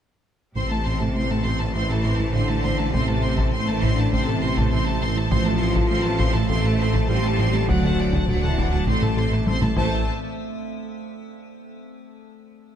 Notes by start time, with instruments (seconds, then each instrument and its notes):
0.56 tuba A1, double bass section A1, detuned saw bass A1, analog synth bass A2, cello section C3, synth arpeggio sound A3, synth drone A3 E4 A4 C5, viola section C4, french horn section C4, violin section C5 C6, taiko
0.71 viola section A3, analog synth bass A3, violin section A4 A5
0.86 analog synth bass A2, viola section C4, violin section C5 C6
1.00 analog synth bass A2, viola section A3, synth arpeggio sound A3, violin section A4 A5
1.15 tuba A1, double bass section A1, analog synth bass A3, viola section C4, violin section C5 C6
1.30 analog synth bass A3, viola section A3, synth arpeggio sound E4, violin section A4 A5
1.45 analog synth bass A2, synth arpeggio sound A3, viola section C4, violin section C5 C6
1.59 analog synth bass A2, viola section A3, synth arpeggio sound C4, violin section A4 A5
1.74 tuba A1, double bass section A1, analog synth bass A2, cello section E3, synth arpeggio sound A3, viola section C4, french horn section E4, violin section C5 C6
1.89 analog synth bass A2, viola section A3, violin section A4 A5, synth arpeggio sound A4
2.03 analog synth bass A2, viola section C4, synth arpeggio sound A4, violin section C5 C6
2.19 analog synth bass A2, viola section A3, synth arpeggio sound A3, violin section A4 A5
2.33 tuba A1, double bass section A1, analog synth bass A2, cello section D3, viola section C4, french horn section D4, synth arpeggio sound A4, violin section C5 C6
2.49 viola section A3, analog synth bass A3, synth arpeggio sound E4, violin section A4 A5
2.63 analog synth bass A2, synth arpeggio sound A3, viola section C4, violin section C5 C6
2.77 viola section A3, analog synth bass A3, synth arpeggio sound E4, violin section A4 A5
2.93 double bass section A1, tuba A1, analog synth bass A2, cello section C3, synth arpeggio sound A3, french horn section C4, viola section C4, violin section C5 C6, taiko
3.08 viola section A3, analog synth bass A3, violin section A4 A5
3.23 analog synth bass A2, viola section C4, violin section C5 C6
3.38 analog synth bass A2, viola section A3, synth arpeggio sound A3, violin section A4 A5, taiko
3.52 double bass section A1, tuba A1, cello section A2, french horn section A3, analog synth bass A3, viola section C4, violin section C5 C6
3.67 viola section A3, analog synth bass A3, synth arpeggio sound E4, violin section A4 A5
3.73 cello section E3, french horn section E4
3.82 analog synth bass A2, synth arpeggio sound A3, viola section C4, violin section C5 C6, taiko
3.93 cello section D3, french horn section D4
3.97 analog synth bass A2, viola section A3, synth arpeggio sound C4, violin section A4 A5
4.12 double bass section A1, tuba A1, analog synth bass A2, cello section C3, synth arpeggio sound A3, viola section C4, french horn section C4, violin section C5 C6, taiko
4.28 analog synth bass A2, viola section A3, violin section A4 A5, synth arpeggio sound A4
4.43 analog synth bass A2, viola section C4, synth arpeggio sound A4, violin section C5 C6
4.57 analog synth bass A2, synth arpeggio sound A3, viola section A3, violin section A4 A5, taiko
4.72 tuba A1, double bass section A1, analog synth bass A2, viola section C4, synth arpeggio sound A4, violin section C5 C6
4.86 viola section A3, analog synth bass A3, synth arpeggio sound E4, violin section A4 A5
5.02 analog synth bass A2, synth arpeggio sound A3, viola section C4, violin section C5 C6
5.17 viola section A3, analog synth bass A3, synth arpeggio sound E4, violin section A4 A5
5.31 double bass section A1, detuned saw bass A1, tuba A1, analog synth bass A2, cello section F3, synth arpeggio sound F3, synth drone A3 F4 A4 C5, viola section C4, french horn section F4, violin section C5 C6, taiko
5.46 analog synth bass A3, viola section A3, violin section A4 A5
5.61 analog synth bass A2, viola section C4, violin section C5 C6
5.75 analog synth bass A2, synth arpeggio sound F3, viola section A3, violin section A4 A5, taiko
5.89 double bass section A1, tuba A1, analog synth bass A3, viola section C4, violin section C5 C6
6.04 analog synth bass A3, viola section A3, synth arpeggio sound C4, violin section A4 A5
6.18 analog synth bass A2, synth arpeggio sound F3, viola section C4, violin section C5 C6, taiko
6.34 analog synth bass A2, synth arpeggio sound A3, viola section A3, violin section A4 A5
6.49 tuba A1, double bass section A1, analog synth bass A2, synth arpeggio sound F3, cello section A3, viola section C4, french horn section A4, violin section C5 C6, taiko
6.64 analog synth bass A2, viola section A3, synth arpeggio sound F4, violin section A4 A5
6.78 analog synth bass A2, viola section C4, synth arpeggio sound F4, violin section C5 C6
6.93 analog synth bass A2, synth arpeggio sound F3, viola section A3, violin section A4 A5, taiko
7.09 tuba A1, double bass section A1, analog synth bass A2, cello section G3, viola section C4, synth arpeggio sound F4, french horn section G4, violin section C5 C6
7.23 analog synth bass A3, viola section A3, synth arpeggio sound C4, violin section A4 A5
7.39 analog synth bass A2, synth arpeggio sound F3, viola section C4, violin section C5 C6
7.53 viola section A3, analog synth bass A3, synth arpeggio sound C4, violin section A4 A5
7.68 detuned saw bass D1, analog synth bass D2, double bass section D2, tuba D2, synth arpeggio sound D3, cello section F#3, viola section F#3, french horn section F#4, violin section D5 F#5, taiko
7.83 analog synth bass D3, viola section A3, violin section F#5 A5
7.98 analog synth bass D2, viola section F#3, violin section D5 F#5
8.13 analog synth bass D2, synth arpeggio sound D3, viola section A3, violin section F#5 A5, taiko
8.28 double bass section D2, tuba D2, analog synth bass D3, cello section F#3, viola section F#3, french horn section F#4, violin section D5 F#5, taiko mid
8.43 analog synth bass D3, synth arpeggio sound A3, viola section A3, violin section F#5 A5, taiko mid
8.48 cello section E3, french horn section E4
8.57 analog synth bass D2, synth arpeggio sound D3, viola section F#3, violin section D5 F#5, taiko
8.68 analog synth bass D2, cello section F#3, french horn section F#4, violin section F#5
8.73 synth arpeggio sound F#3, viola section A3, violin section A5
8.87 detuned saw bass A1, double bass section A1, tuba A1, analog synth bass A2, synth arpeggio sound A3, cello section A3, viola section C4, french horn section A4, violin section C5 C6, taiko
9.02 analog synth bass A2, viola section A3, violin section A4 A5, synth arpeggio sound A4, taiko mid
9.16 analog synth bass A2, viola section C4, synth arpeggio sound A4, violin section C5 C6
9.31 analog synth bass A2, viola section A3, synth arpeggio sound A3, violin section A4 A5
9.47 double bass section A1, tuba A1, analog synth bass A2, viola section C4, synth arpeggio sound A4, violin section C5 C6, taiko high
9.62 viola section A3, analog synth bass A3, synth arpeggio sound E4, violin section A4 A5, taiko mid
9.76 detuned saw bass A1, double bass section A1, tuba A1, cello section A3, viola section A3, french horn section A4, violin section C5 A5, taiko